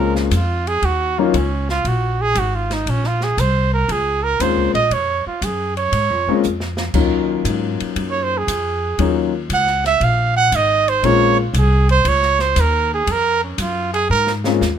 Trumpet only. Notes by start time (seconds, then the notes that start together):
Already playing: A#4
0.17 C#4
0.35 F4
0.68 G#4
0.85 F#4
1.19 A#3
1.36 C#4
1.70 F4
1.88 F#4
2.21 G#4
2.39 F#4
2.55 F4
2.73 D#4
2.90 C#4
3.07 F4
3.23 G#4
3.40 C5
3.74 A#4
3.92 G#4
4.23 A#4
4.42 C5
4.75 D#5
4.93 C#5
5.27 F4
5.44 G#4
5.77 C#5
8.11 C#5
8.23 C5
8.38 G#4
9.54 F#5
9.86 E5
10.04 F5
10.37 F#5
10.56 D#5
10.89 C5
11.06 C#5
11.41 F4
11.58 G#4
11.91 C5
12.08 C#5
12.41 C5
12.60 A#4
12.94 G#4
13.12 A#4
13.44 C#4
13.61 F4
13.94 G#4
14.11 A#4